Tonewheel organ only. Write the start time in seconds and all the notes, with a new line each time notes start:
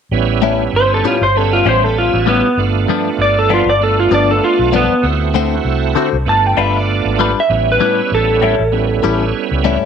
0.12 G3 B3 C#4 E4
1.35 G3 B3 C#4 E5
2.58 A3 B3 D4 F4
3.80 A3 B3 D4 F4
5.02 A3 C4 E4 F#4
6.25 A3 B3 D4 F4
7.49 G3 B3 C#4 E4
8.72 G3 B3 C#4 E4